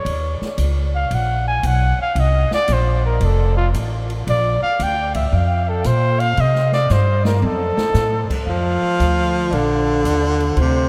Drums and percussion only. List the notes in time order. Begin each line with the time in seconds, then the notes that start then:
0.06 ride
0.42 snare
0.58 hi-hat pedal, ride
1.11 ride
1.63 hi-hat pedal, ride
2.16 ride
2.51 snare
2.68 hi-hat pedal, ride
3.21 ride
3.74 hi-hat pedal, ride
4.10 ride
4.27 ride
4.80 hi-hat pedal, ride
5.14 kick, ride
5.84 hi-hat pedal, ride
6.20 ride
6.37 ride
6.55 snare
6.72 snare
6.89 snare, hi-hat pedal
7.25 snare
7.42 high tom
7.78 snare
7.94 snare, hi-hat pedal
8.30 kick, crash
9.00 hi-hat pedal, ride
9.52 ride
10.05 hi-hat pedal, ride
10.40 ride
10.57 ride